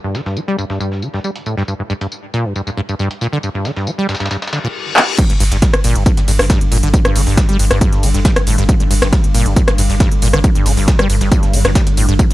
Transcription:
0.04 acid bass G2
0.15 acid bass D3, snare, tambourine
0.26 acid bass G2, snare
0.36 acid bass G3, tambourine
0.48 acid bass G3
0.58 acid bass G2, tambourine
0.70 acid bass G2, snare
0.80 acid bass G2, tambourine
0.92 snare
1.02 acid bass D3, tambourine
1.14 acid bass G2, snare
1.24 acid bass G3, tambourine
1.36 closed hi-hat
1.46 acid bass A2, tambourine
1.57 acid bass G2, snare
1.68 acid bass G2, tambourine
1.79 acid bass G2
1.90 acid bass G2, tambourine
2.01 acid bass G2, closed hi-hat
2.12 tambourine
2.34 acid bass A#2, tambourine
2.45 acid bass G2
2.55 acid bass G2, tambourine
2.67 acid bass G2, tambourine
2.77 acid bass G2
2.89 acid bass G2, tambourine
2.99 acid bass G2, tambourine
3.11 closed hi-hat
3.21 acid bass A#2, tambourine
3.33 acid bass D3
3.43 acid bass G2, tambourine
3.54 acid bass G2
3.65 acid bass D3, snare, tambourine
3.76 acid bass G2, snare
3.87 acid bass G3, tambourine
3.98 acid bass G3
4.09 acid bass G2, snare, tambourine
4.15 snare, tambourine
4.20 acid bass G2, snare, tambourine
4.26 snare, tambourine
4.31 acid bass G2, snare, tambourine, reverse cymbal
4.42 snare, tambourine
4.47 snare, tambourine
4.53 acid bass D3, snare, tambourine
4.64 acid bass A#2
4.97 clap
5.18 synth drone G2 D3, acid bass G2, kick, closed hi-hat, crash, tambourine
5.30 acid bass G2, closed hi-hat
5.40 sub bass G1, acid bass G2, open hi-hat, ride, tambourine
5.52 sub bass G1, acid bass G2, closed hi-hat
5.62 kick, snare, closed hi-hat, tambourine
5.74 cross-stick, closed hi-hat
5.84 sub bass G1, acid bass A#2, open hi-hat, ride, tambourine
5.95 sub bass G1, acid bass G2, closed hi-hat
6.06 kick, closed hi-hat, tambourine
6.17 acid bass G2, closed hi-hat
6.28 sub bass G1, acid bass G2, open hi-hat, ride, tambourine
6.39 sub bass G1, acid bass G2, cross-stick, snare, open hi-hat
6.50 acid bass G2, kick, snare, closed hi-hat, tambourine
6.61 closed hi-hat
6.72 sub bass G1, acid bass A#2, open hi-hat, ride, tambourine
6.83 sub bass G1, acid bass D3, closed hi-hat
6.94 acid bass G2, kick, closed hi-hat, tambourine
7.05 acid bass G2, cross-stick, closed hi-hat
7.15 sub bass G1, acid bass D3, snare, open hi-hat, ride, tambourine
7.27 sub bass G1, acid bass G2, snare, open hi-hat
7.37 acid bass G3, kick, snare, closed hi-hat, tambourine
7.49 acid bass G3, closed hi-hat
7.59 sub bass G1, acid bass G2, open hi-hat, ride, tambourine
7.71 sub bass G1, acid bass G2, cross-stick, snare, closed hi-hat
7.81 kick, closed hi-hat, tambourine
7.93 snare, closed hi-hat
8.03 sub bass G1, acid bass D3, open hi-hat, ride, tambourine
8.14 sub bass G1, acid bass G2, snare, closed hi-hat
8.25 acid bass G3, kick, snare, closed hi-hat, tambourine
8.36 cross-stick, closed hi-hat
8.47 sub bass G1, acid bass A2, open hi-hat, ride, tambourine
8.58 sub bass G1, acid bass G2, snare, closed hi-hat
8.69 acid bass G2, kick, closed hi-hat, tambourine
8.80 acid bass G2, closed hi-hat
8.91 sub bass G1, acid bass G2, open hi-hat, ride, tambourine
9.02 sub bass G1, acid bass G2, cross-stick, closed hi-hat
9.13 kick, snare, closed hi-hat, tambourine
9.24 closed hi-hat
9.34 sub bass G1, acid bass A#2, open hi-hat, ride, tambourine
9.46 sub bass G1, acid bass G2, closed hi-hat
9.56 kick, closed hi-hat, tambourine
9.68 acid bass G2, cross-stick, closed hi-hat
9.78 sub bass G1, acid bass G2, open hi-hat, ride, tambourine
9.90 sub bass G1, acid bass G2, snare, open hi-hat
10.00 acid bass G2, kick, snare, closed hi-hat, tambourine
10.12 closed hi-hat
10.22 sub bass G1, acid bass A#2, open hi-hat, ride, tambourine
10.33 sub bass G1, acid bass D3, cross-stick, closed hi-hat
10.44 acid bass G2, kick, closed hi-hat, tambourine
10.55 acid bass G2, closed hi-hat
10.66 sub bass G1, acid bass D3, snare, open hi-hat, ride, tambourine
10.77 sub bass G1, acid bass G2, snare, open hi-hat
10.88 acid bass G3, kick, snare, closed hi-hat, tambourine
10.99 acid bass G3, cross-stick, closed hi-hat
11.10 sub bass G1, acid bass G2, open hi-hat, ride, tambourine
11.21 sub bass G1, acid bass G2, snare, closed hi-hat
11.32 acid bass G2, kick, closed hi-hat, tambourine
11.43 snare, closed hi-hat
11.53 sub bass G1, acid bass D3, open hi-hat, ride, tambourine
11.65 sub bass G1, acid bass G2, cross-stick, snare, closed hi-hat
11.75 acid bass G3, kick, snare, closed hi-hat, tambourine
11.87 closed hi-hat
11.97 sub bass G1, acid bass A2, open hi-hat, ride, tambourine
12.09 sub bass G1, acid bass G2, closed hi-hat
12.19 acid bass G2, kick, closed hi-hat, tambourine
12.30 acid bass G2, closed hi-hat

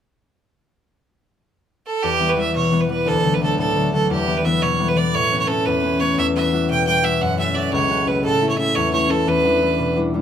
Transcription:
1.87 fiddle A4
2.03 harp E2, fiddle G4
2.20 harp E3 G3 B3
2.28 fiddle B4 C#5
2.36 harp E3 G3 B3, fiddle E5
2.55 harp B2, fiddle C#5
2.71 harp E3 G3 B3
2.81 fiddle B4
2.89 harp E3 G3 B3, fiddle B4
3.06 harp D2, fiddle A4
3.24 harp D3 F#3 A3
3.34 fiddle B4
3.41 harp D3 F#3 A3, fiddle A4
3.58 harp A2, fiddle A4
3.75 harp D3 F#3 A3
3.93 harp D3 F#3 A3, fiddle A4
4.10 harp E2, fiddle G4
4.27 harp E3 G3 B3
4.37 fiddle B4
4.45 harp E3 G3 B3, fiddle E5
4.62 harp B2, fiddle C#5
4.79 harp E3 G3 B3
4.88 fiddle B4
4.96 harp E3 G3 B3, fiddle D5
5.14 harp A2, fiddle C#5
5.31 harp A3 B3 C#4
5.39 fiddle C#5
5.48 harp A3 B3 C#4, fiddle A4
5.65 harp E2, fiddle B4
5.83 harp A3 B3 C#4
6.00 harp A3 B3 C#4, fiddle C#5
6.18 harp E2, fiddle E5
6.35 harp G3 E4 F#4, fiddle E5
6.52 harp G3 E4 F#4
6.70 harp B2, fiddle G5
6.87 harp G3 E4 F#4, fiddle G5
7.03 harp G3 E4 F#4, fiddle E5
7.21 harp F#2, fiddle F#5
7.38 harp A3 C#4 F#4, fiddle E5
7.55 harp A3 C#4 F#4, fiddle D5
7.72 harp C#2, fiddle C#5
7.89 harp A3 C#4 F#4
8.07 harp A3 C#4 F#4, fiddle B4
8.24 harp A2, fiddle A4
8.41 harp A3 C#4 E4
8.49 fiddle C#5
8.58 harp A3 C#4 E4, fiddle E5
8.75 harp E2, fiddle C#5
8.93 harp A3 C#4 E4, fiddle C#5
9.10 harp A3 C#4 E4, fiddle A4
9.27 harp E2, fiddle B4
9.44 harp G3 D4 E4
9.62 harp G3 D4 E4
9.79 harp B2
9.96 harp G3 D4 E4
10.14 harp G3 D4 E4

